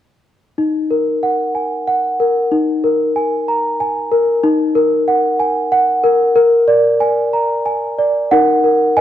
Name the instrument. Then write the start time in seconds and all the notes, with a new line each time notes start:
celesta
0.58 D#4
0.91 A#4
1.23 F#5
1.55 G#5
1.87 F#5
2.20 A#4
2.52 D#4
2.84 A#4
3.16 G#5
3.48 A#5
3.80 G#5
4.12 A#4
4.44 D#4
4.75 A#4
5.08 F#5
5.40 G#5
5.72 F#5
6.04 A#4
6.36 A#4
6.68 D5
7.00 G#5
7.33 A#5
7.66 G#5
7.99 D5
8.31 D#4 A#4 F#5
8.64 A#4
8.97 D#5 G#5